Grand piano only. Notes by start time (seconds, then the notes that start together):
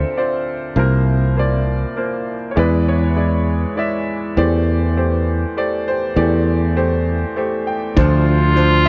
Already playing: D2 D3 C4 F4 A4 A#4 C5 D5 E5
0.16 C4 F4 C5 D5
0.76 C2 C3 A#3 F4 A#4 C5
0.81 F4
1.37 A#3 F4 C5 D5
1.97 A#3 F4 C5
2.51 C#5
2.56 E2 E3 G#3 E4 B4 D5
2.60 G#4
2.89 C#5
3.16 G#3 E4 D5
3.76 G#3 E4 D5 E5
4.36 E2 E3 A3 G4 C5 D5
4.97 A3 G4 C5
5.57 A3 G4 C5 D5
5.88 G4 C5
6.16 E2 E3 A3 G4 D5
6.76 A3 G4 C5
7.36 A3 G4 C5
7.67 G5
7.96 D2 D3 F3 D4 F4 A4 C5
8.56 F3 D4 C5